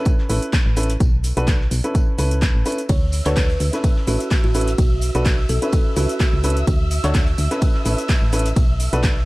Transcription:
Already playing: upright piano C#4 E4 A4 B4
0.05 kick, closed hi-hat, tambourine, cabasa
0.19 snare
0.29 fm bass A1, upright piano C#4 E4 A4 B4, open hi-hat, tambourine, cabasa
0.42 closed hi-hat, cabasa
0.53 kick, snare, clap, closed hi-hat, tambourine, cabasa
0.66 fm bass A1, snare
0.77 upright piano C#4 E4 A4 B4, open hi-hat, tambourine, cabasa
0.83 closed hi-hat
0.90 closed hi-hat, cabasa
1.00 fm bass B1, kick, closed hi-hat, tambourine, cabasa
1.24 open hi-hat, tambourine, cabasa
1.37 fm bass B1, upright piano D4 F#4 A4 B4, closed hi-hat, cabasa
1.47 kick, snare, clap, closed hi-hat, tambourine, cabasa
1.61 snare
1.71 fm bass B1, open hi-hat, tambourine, cabasa
1.84 upright piano C#4 E4 A4 B4, closed hi-hat, cabasa
1.95 kick, closed hi-hat, tambourine, cabasa
2.18 fm bass C#2, upright piano C#4 E4 A4 B4, open hi-hat, tambourine, cabasa
2.31 closed hi-hat, cabasa
2.41 kick, snare, clap, closed hi-hat, tambourine, cabasa
2.55 fm bass A1
2.66 upright piano C#4 E4 A4 B4, open hi-hat, tambourine, cabasa
2.72 closed hi-hat
2.78 closed hi-hat, cabasa
2.89 fm bass D2, kalimba C#5, violin section E5 E6, kick, closed hi-hat, ride, tambourine, cabasa
3.12 open hi-hat, tambourine, cabasa
3.26 fm bass D2, upright piano D4 F#4 A4 C#5, kalimba B4, clap, closed hi-hat, cabasa
3.36 kick, snare, clap, closed hi-hat, ride, tambourine, cabasa
3.50 closed hi-hat
3.60 fm bass D2, open hi-hat, tambourine, cabasa
3.73 upright piano C#4 E4 A4 B4, snare, closed hi-hat, cabasa
3.84 kick, closed hi-hat, ride, tambourine, cabasa
3.96 snare
4.07 fm bass A1, upright piano C#4 E4 A4 B4, kalimba F#4, open hi-hat, tambourine, cabasa
4.20 closed hi-hat, cabasa
4.31 kick, snare, clap, closed hi-hat, ride, tambourine, cabasa
4.43 fm bass A1, kalimba F#4, snare
4.55 upright piano C#4 E4 A4 B4, kalimba F#4, open hi-hat, tambourine, cabasa
4.61 closed hi-hat
4.68 closed hi-hat, cabasa
4.78 fm bass B1, kick, closed hi-hat, ride, tambourine, cabasa
5.01 open hi-hat, tambourine, cabasa
5.15 fm bass B1, upright piano D4 F#4 A4 B4, closed hi-hat, cabasa
5.26 kick, snare, clap, closed hi-hat, ride, tambourine, cabasa
5.37 snare
5.49 fm bass B1, kalimba A4, open hi-hat, tambourine, cabasa
5.62 upright piano C#4 E4 A4 B4, closed hi-hat, cabasa
5.72 kick, closed hi-hat, ride, tambourine, cabasa
5.96 fm bass C#2, upright piano C#4 E4 A4 B4, kalimba F#4, open hi-hat, tambourine, cabasa
6.09 closed hi-hat, cabasa
6.20 kick, snare, clap, closed hi-hat, ride, tambourine, cabasa
6.33 fm bass C#2
6.44 upright piano C#4 E4 A4 B4, open hi-hat, tambourine, cabasa
6.50 closed hi-hat
6.57 closed hi-hat, cabasa
6.67 fm bass D2, kick, closed hi-hat, ride, tambourine, cabasa
6.91 open hi-hat, tambourine, cabasa
7.04 fm bass D2, upright piano D4 F#4 A4 C#5, clap, closed hi-hat, cabasa
7.14 kick, snare, clap, closed hi-hat, ride, tambourine, cabasa
7.27 closed hi-hat
7.38 fm bass D2, open hi-hat, tambourine, cabasa
7.51 upright piano C#4 E4 A4 B4, snare, closed hi-hat, cabasa
7.62 kick, closed hi-hat, ride, tambourine, cabasa
7.74 snare
7.86 fm bass A1, upright piano C#4 E4 A4 B4, open hi-hat, tambourine, cabasa
7.98 closed hi-hat, cabasa
8.09 kick, snare, clap, closed hi-hat, ride, tambourine, cabasa
8.22 fm bass A1, snare
8.33 upright piano C#4 E4 A4 B4, open hi-hat, tambourine, cabasa
8.39 closed hi-hat
8.46 closed hi-hat, cabasa
8.56 fm bass B1, kick, closed hi-hat, ride, tambourine, cabasa
8.80 open hi-hat, tambourine, cabasa
8.93 fm bass B1, upright piano D4 F#4 A4 B4, closed hi-hat, cabasa
9.03 kick, snare, clap, closed hi-hat, ride, tambourine, cabasa
9.17 snare

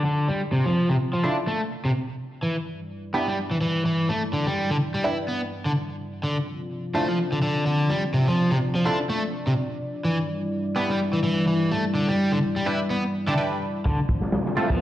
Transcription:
Already playing: analog synth pad C4 F4 D5
0.05 overdriven electric guitar D3
0.28 overdriven electric guitar G3
0.52 overdriven electric guitar C3
0.66 overdriven electric guitar F3
0.90 overdriven electric guitar C3
1.13 overdriven electric guitar F3
1.23 synth stab D3 E4 F4 A4 C5, overdriven electric guitar D4
1.47 overdriven electric guitar A3
1.85 overdriven electric guitar C3
2.42 overdriven electric guitar E3, analog synth pad G3 E4 D5
3.14 overdriven electric guitar B3, synth stab D4 E4 G4 B4
3.28 overdriven electric guitar G3
3.51 overdriven electric guitar E3
3.61 overdriven electric guitar E3
3.85 overdriven electric guitar E3
4.09 overdriven electric guitar A3
4.33 overdriven electric guitar D3
4.47 overdriven electric guitar G3
4.71 overdriven electric guitar D3
4.94 overdriven electric guitar G3
5.04 synth stab D4 E4 G4 B4, overdriven electric guitar E4
5.28 overdriven electric guitar B3
5.66 overdriven electric guitar D3
6.23 overdriven electric guitar D3, analog synth pad C4 F4
6.94 synth stab D3 E4 F4 A4 C5, overdriven electric guitar A3
7.08 overdriven electric guitar F3
7.32 overdriven electric guitar D3
7.42 overdriven electric guitar D3
7.66 overdriven electric guitar D3
7.90 overdriven electric guitar G3
8.14 overdriven electric guitar C3
8.28 overdriven electric guitar F3
8.51 overdriven electric guitar C3
8.75 overdriven electric guitar F3
8.85 synth stab D3 E4 F4 A4 C5, overdriven electric guitar D4
9.09 overdriven electric guitar A3
9.47 overdriven electric guitar C3
10.04 overdriven electric guitar E3, analog synth pad G3 E4
10.76 overdriven electric guitar B3, synth stab D4 E4 G4 B4
10.90 overdriven electric guitar G3
11.13 overdriven electric guitar E3
11.23 overdriven electric guitar E3
11.47 overdriven electric guitar E3
11.71 overdriven electric guitar A3
11.95 overdriven electric guitar D3
12.08 overdriven electric guitar G3
12.32 overdriven electric guitar D3
12.56 overdriven electric guitar G3
12.66 synth stab D4 E4 G4 B4, overdriven electric guitar E4
12.90 overdriven electric guitar B3
13.27 overdriven electric guitar D3, synth stab D4 E4 G4 A4
13.37 synth stab D4 E4 G4 B4
13.85 picked electric bass D2, overdriven electric guitar D3, analog synth pad C4 F4 D5, kick, closed hi-hat, riser
14.09 kick, closed hi-hat
14.22 picked electric bass A1, snare
14.32 snare, closed hi-hat
14.46 picked electric bass D2, snare
14.56 overdriven electric guitar A3, synth stab C4 E4 F4 A4, closed hi-hat
14.70 overdriven electric guitar F3, kick

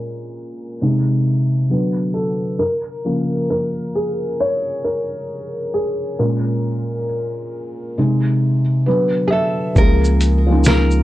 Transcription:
Already playing: felt piano A#2 G#3 C#4 A#4
0.81 felt piano C3 G#3 D#4
1.70 felt piano D3 F#3 B3
2.14 felt piano A4
2.59 felt piano A#4
3.04 felt piano C#3 F3 A#3
3.50 felt piano A#4
3.95 felt piano G#4
4.40 felt piano C#5
4.84 felt piano A#4
5.74 felt piano G#4
6.19 felt piano A#2 G#3 C#4 A#4
7.98 felt piano C3 G#3 D#4
8.86 felt piano D3 F#3 B3 B4
9.28 nylon-string guitar G#4, felt piano E5
9.32 nylon-string guitar A4
9.75 sub bass C#2, felt piano F3 G#3 A#3 C#4, nylon-string guitar A#4, kick, shaker
9.80 felt piano G#4
10.04 shaker
10.21 closed hi-hat, shaker
10.46 felt piano F3 G#3 A#3
10.51 felt piano C#4 D#4
10.64 nylon-string guitar A#4, snare, tambourine, shaker
10.91 shaker

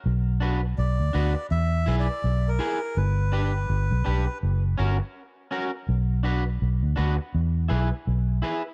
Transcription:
0.06 fingered electric bass B1
0.40 clean electric guitar D4 F#4 B4
0.78 fingered electric bass B1, melodica D5
1.00 fingered electric bass D2
1.13 fingered electric bass D2, clean electric guitar D4 F#4 B4
1.35 muted clean electric guitar stroke
1.51 fingered electric bass E2, melodica E5
1.86 fingered electric bass B1, clean electric guitar E4 G#4 B4
2.00 melodica D5
2.24 fingered electric bass B1
2.48 melodica A#4
2.59 clean electric guitar E4 G#4 B4
2.97 fingered electric bass G1, melodica B4
3.32 clean electric guitar D4 G4 B4
3.70 fingered electric bass G1
3.91 fingered electric bass B1
4.05 fingered electric bass B1, clean electric guitar D4 G4 B4
4.26 muted clean electric guitar stroke
4.43 fingered electric bass F#1
4.78 fingered electric bass G1, clean electric guitar C#4 F#4 A#4
4.99 muted clean electric guitar stroke
5.51 clean electric guitar C#4 F#4 A#4
5.89 fingered electric bass B1
6.23 clean electric guitar D4 F#4 B4
6.62 fingered electric bass B1
6.83 fingered electric bass D2
6.96 fingered electric bass D2, clean electric guitar D4 F#4 B4
7.17 muted clean electric guitar stroke
7.35 fingered electric bass E2
7.69 fingered electric bass B1, clean electric guitar E4 G#4 B4
8.07 fingered electric bass B1
8.42 clean electric guitar E4 G#4 B4

